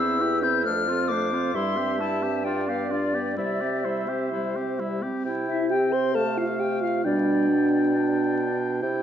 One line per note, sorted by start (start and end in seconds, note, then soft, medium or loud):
0.00 0.67 E2 medium
0.00 0.22 C4 soft
0.00 0.22 E4 soft
0.00 0.21 C5 medium
0.00 0.42 E6 medium
0.19 0.44 E4 soft
0.19 0.45 G4 soft
0.19 0.66 B4 medium
0.42 0.64 C4 soft
0.42 0.65 E4 soft
0.42 0.65 G6 medium
0.65 1.54 F2 medium
0.65 0.89 A3 soft
0.65 0.90 D4 soft
0.65 1.12 A4 soft
0.65 1.10 F6 medium
0.88 1.12 C4 soft
0.88 1.13 F4 soft
1.08 1.34 A3 soft
1.08 1.36 D4 soft
1.08 1.54 C5 medium
1.08 1.57 D6 medium
1.32 1.54 C4 soft
1.32 1.55 F4 soft
1.54 3.34 G2 soft
1.54 1.79 G3 soft
1.54 1.79 E4 soft
1.54 2.43 E5 medium
1.54 1.99 C6 medium
1.77 2.01 C4 soft
1.77 2.02 G4 soft
2.00 2.23 G3 soft
2.00 2.24 E4 soft
2.00 2.46 A5 medium
2.22 2.45 C4 soft
2.22 2.45 G4 soft
2.44 2.70 D4 soft
2.44 2.71 F4 soft
2.44 3.35 D5 soft
2.44 2.67 G5 medium
2.68 2.92 B3 soft
2.68 2.93 G4 soft
2.68 2.90 F5 medium
2.91 3.16 D4 soft
2.91 3.16 F4 soft
2.91 3.35 D5 soft
3.15 3.37 B3 soft
3.15 3.36 G4 soft
3.36 4.99 C3 soft
3.36 3.63 G3 soft
3.36 3.62 E4 soft
3.36 3.86 D5 medium
3.36 4.99 E5 soft
3.61 3.86 C4 soft
3.61 3.87 G4 soft
3.85 4.10 G3 soft
3.85 4.10 E4 soft
3.85 5.02 C5 soft
4.08 4.31 C4 soft
4.08 4.31 G4 soft
4.32 4.58 G3 soft
4.32 4.57 E4 soft
4.56 4.81 C4 soft
4.56 4.81 G4 soft
4.80 5.05 G3 soft
4.80 5.04 E4 soft
5.02 5.26 C4 soft
5.02 5.25 G4 soft
5.25 7.01 C3 soft
5.25 5.73 E4 medium
5.25 5.58 G5 soft
5.48 5.73 E4 medium
5.48 5.69 E5 medium
5.70 6.17 C4 soft
5.70 5.95 G4 medium
5.70 5.94 G5 medium
5.70 6.14 G5 soft
5.92 6.14 C5 medium
5.92 6.16 C6 medium
6.14 7.04 A3 soft
6.14 6.25 A4 medium
6.14 7.06 F5 soft
6.14 6.39 A5 medium
6.37 6.48 F4 medium
6.37 6.61 F5 medium
6.59 6.84 G4 medium
6.59 6.82 G5 medium
6.82 7.07 F4 medium
6.82 7.04 F5 medium
7.05 8.79 B2 medium
7.05 7.50 G3 soft
7.05 8.61 D4 medium
7.05 8.57 D5 medium
7.05 8.82 G5 medium
7.49 7.94 B3 soft
7.94 8.83 D4 soft
8.82 9.03 C3 medium
8.82 9.03 E4 medium
8.82 9.03 G5 medium